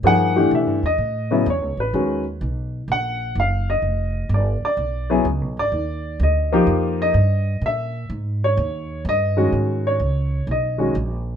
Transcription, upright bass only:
X:1
M:4/4
L:1/8
Q:"Swing" 1/4=126
K:Ablyd
V:1 name="Upright bass" clef=bass
G,,2 (3=B,, G,, =E,, =A,,2 (3E,, ^C,, =A,,, | ^D,,2 =B,,,2 ^A,,,2 ^F,,,2 | F,,,2 G,,, z =B,,,2 (3_D,, B,,, ^G,,, | E,,2 D,,2 F,,2 G,,2 |
B,,2 A,,2 E,,2 G,,2 | A,,2 _D,,2 _C,,2 B,,,2 |]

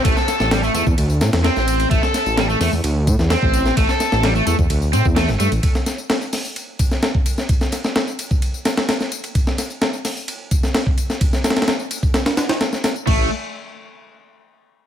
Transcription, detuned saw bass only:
X:1
M:4/4
L:1/16
Q:1/4=129
K:Am
V:1 name="Detuned saw bass" clef=bass
A,,, z2 A,,,3 E,, E,, D,,2 A,, E,, z A,,,3 | A,,, z2 A,,,3 E,, E,, D,,2 A,, E,, z A,,,3 | A,,, z2 A,,,3 E,, E,, D,,2 A,, E,,2 G,,, G,, A,,, | z16 |
z16 | z16 | z16 | A,,,2 z12 z2 |]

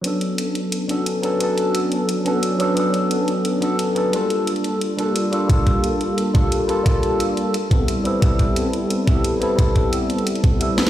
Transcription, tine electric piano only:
X:1
M:4/4
L:1/8
Q:1/4=176
K:G
V:1 name="Tine electric piano"
[F,B,^CDA]4- [F,B,CDA] [F,B,CDA] z [F,B,CDA] | [F,B,^CDA]4- [F,B,CDA] [F,B,CDA] z [F,B,CDA] | [F,B,^CDA]4- [F,B,CDA] [F,B,CDA] z [F,B,CDA] | [G,_B,D=FA]4- [G,B,DFA] [G,B,DFA] z [G,B,DFA] |
[G,_B,D=FA]4- [G,B,DFA] [G,B,DFA] z [G,B,DFA] | [G,_B,D=FA]4 z [G,=B,CEA] z [G,B,CEA] | [G,B,CEA]4- [G,B,CEA] [G,B,CEA] z [G,B,CEA] | [G,B,CEA]4- [G,B,CEA] z [G,B,CEA] [G,B,CEA] |]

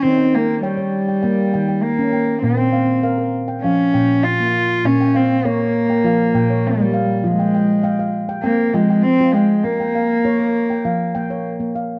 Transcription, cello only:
X:1
M:4/4
L:1/8
Q:1/4=100
K:none
V:1 name="Cello"
C _B, G,4 B,2 | C3 z _D2 F2 | _D C _B,4 G,2 | _A,3 z _B, A, C A, |
_B,6 z2 |]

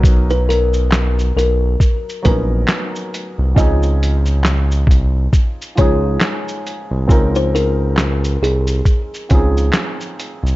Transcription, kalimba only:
X:1
M:4/4
L:1/16
Q:"Swing 16ths" 1/4=68
K:Db
V:1 name="Kalimba"
z _c B4 B2 z2 c z4 z | e8- e2 d6 | z c B4 A6 z4 |]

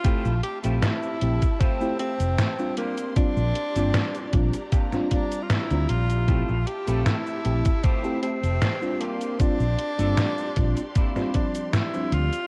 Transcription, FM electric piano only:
X:1
M:4/4
L:1/16
Q:1/4=77
K:Bblyd
V:1 name="FM electric piano"
[A,CEG] z2 [A,CGe]3 [A,CEG] z2 [A,CEG] [A,CGe]3 [G,CDF]2 z | [G,CDF] z2 [G,CDF]3 [G,CDF] z2 [G,CDF] [G,CDF]3 [G,CDF]2 z | [A,CEG] z2 [A,CGe]3 [A,CEG] z2 [A,CEG] [A,CGe]3 [G,CDF]2 z | [G,CDF] z2 [G,CDF]3 [G,CDF] z2 [G,CDF] [F,G,CD]3 [F,G,CD]2 z |]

